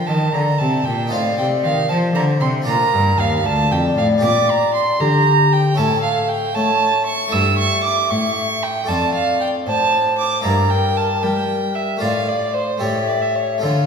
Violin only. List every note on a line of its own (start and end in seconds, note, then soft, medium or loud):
0.07 0.34 A5 medium
0.33 0.60 A#5 medium
0.59 0.86 A5 medium
0.84 1.13 G5 medium
1.12 1.37 F5 medium
1.38 1.46 G5 medium
1.64 1.89 F5 medium
1.90 1.98 A5 medium
2.15 2.23 A#5 medium
2.41 2.49 C6 medium
2.67 3.21 A#5 medium
3.20 3.47 F5 medium
3.46 3.73 A5 medium
3.72 3.97 G5 medium
3.98 4.06 F5 medium
4.24 4.52 D6 medium
4.50 4.74 A#5 medium
4.74 5.02 C6 medium
5.00 5.54 A#5 medium
5.53 5.79 G5 medium
5.77 6.02 A5 medium
6.03 6.30 F5 medium
6.29 6.56 G5 medium
6.55 7.06 A5 medium
7.06 7.34 C#6 medium
7.32 7.58 E6 medium
7.59 7.84 C#6 medium
7.84 8.11 D6 medium
8.10 8.64 C#6 medium
8.63 8.90 G5 medium
8.88 9.14 A5 medium
9.15 9.40 F5 medium
9.41 9.49 G5 medium
9.68 10.18 A5 medium
10.19 10.44 D6 medium
10.45 10.71 A#5 medium
10.70 10.98 G5 medium
10.97 11.25 A5 medium
11.23 11.77 G5 medium
11.75 12.01 E5 medium
12.01 12.30 F5 medium
12.28 12.55 D5 medium
12.54 12.82 C5 medium
12.81 13.10 C#5 medium
13.08 13.23 D5 medium
13.22 13.37 E5 medium
13.35 13.63 C#5 medium
13.64 13.86 C#5 medium